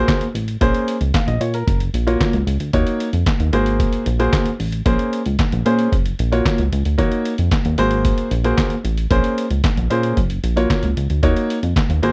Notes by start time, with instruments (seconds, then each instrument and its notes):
Already playing: grand piano A#3 F#4 G#4 C5
0.08 kick, snare, clap, closed hi-hat
0.21 closed hi-hat
0.34 analog synth bass A1, closed hi-hat
0.48 closed hi-hat
0.61 analog synth bass A#1, grand piano A#3 C#4 G#4 C5, kick, closed hi-hat
0.74 closed hi-hat
0.88 closed hi-hat
1.01 analog synth bass C#2, closed hi-hat
1.14 grand piano F5, kick, snare, clap, closed hi-hat
1.27 analog synth bass A#1, grand piano D#5, closed hi-hat
1.41 analog synth bass A#2, grand piano C#5, closed hi-hat
1.54 grand piano A#4, closed hi-hat
1.68 analog synth bass F#1, kick, closed hi-hat
1.80 closed hi-hat
1.94 analog synth bass A#1, closed hi-hat
2.07 grand piano A#3 F4 F#4 C#5, closed hi-hat
2.21 kick, snare, clap, closed hi-hat
2.33 analog synth bass C#2, closed hi-hat
2.47 analog synth bass C#2, closed hi-hat
2.60 analog synth bass D2, closed hi-hat
2.73 analog synth bass D#2, grand piano A#3 D#4 F#4 C#5, kick, closed hi-hat
2.87 closed hi-hat
3.00 closed hi-hat
3.13 analog synth bass F2, closed hi-hat
3.26 kick, snare, clap, closed hi-hat
3.40 analog synth bass D#2, closed hi-hat
3.53 analog synth bass G#1, grand piano A#3 F#4 G#4 C5, closed hi-hat
3.66 closed hi-hat
3.80 kick, closed hi-hat
3.93 closed hi-hat
4.06 analog synth bass A#1, closed hi-hat
4.19 grand piano A#3 F#4 G#4 C5, closed hi-hat
4.33 kick, snare, clap, closed hi-hat
4.46 closed hi-hat
4.60 analog synth bass A1, open hi-hat
4.72 closed hi-hat
4.86 analog synth bass A#1, grand piano A#3 C#4 G#4 C5, kick, closed hi-hat
4.99 closed hi-hat
5.13 closed hi-hat
5.26 analog synth bass C#2, closed hi-hat
5.39 kick, snare, clap, closed hi-hat
5.52 analog synth bass A#1, closed hi-hat
5.65 analog synth bass A#2, grand piano A#3 C#4 G#4 C5, closed hi-hat
5.79 closed hi-hat
5.92 analog synth bass F#1, kick, closed hi-hat
6.06 closed hi-hat
6.19 analog synth bass A#1, closed hi-hat
6.32 grand piano A#3 F4 F#4 C#5, closed hi-hat
6.46 kick, snare, clap, closed hi-hat
6.58 analog synth bass C#2, closed hi-hat
6.72 analog synth bass C#2, closed hi-hat
6.85 analog synth bass D2, closed hi-hat
6.98 analog synth bass D#2, grand piano A#3 D#4 F#4 C#5, kick, closed hi-hat
7.12 closed hi-hat
7.25 closed hi-hat
7.38 analog synth bass F2, closed hi-hat
7.51 kick, snare, clap, closed hi-hat
7.65 analog synth bass D#2, closed hi-hat
7.78 analog synth bass G#1, grand piano A#3 F#4 G#4 C5, closed hi-hat
7.91 closed hi-hat
8.05 kick, closed hi-hat
8.18 closed hi-hat
8.31 analog synth bass A#1, closed hi-hat
8.44 grand piano A#3 F#4 G#4 C5, closed hi-hat
8.58 kick, snare, clap, closed hi-hat
8.70 closed hi-hat
8.84 analog synth bass A1, closed hi-hat
8.98 closed hi-hat
9.10 analog synth bass A#1, grand piano A#3 C#4 G#4 C5, kick, closed hi-hat
9.24 closed hi-hat
9.38 closed hi-hat
9.51 analog synth bass C#2, closed hi-hat
9.64 kick, snare, clap, closed hi-hat
9.77 analog synth bass A#1, closed hi-hat
9.90 analog synth bass A#2, grand piano A#3 C#4 G#4 C5, closed hi-hat
10.03 closed hi-hat
10.17 analog synth bass F#1, kick, closed hi-hat
10.30 closed hi-hat
10.44 analog synth bass A#1, closed hi-hat
10.56 grand piano A#3 F4 F#4 C#5, closed hi-hat
10.70 kick, snare, clap, closed hi-hat
10.83 analog synth bass C#2, closed hi-hat
10.97 analog synth bass C#2, closed hi-hat
11.10 analog synth bass D2, closed hi-hat
11.23 analog synth bass D#2, grand piano A#3 D#4 F#4 C#5, kick, closed hi-hat
11.37 closed hi-hat
11.50 closed hi-hat
11.63 analog synth bass F2, closed hi-hat
11.76 kick, snare, clap, closed hi-hat
11.90 analog synth bass D#2, closed hi-hat
12.03 analog synth bass G#1, grand piano A#3 F#4 G#4 C5, closed hi-hat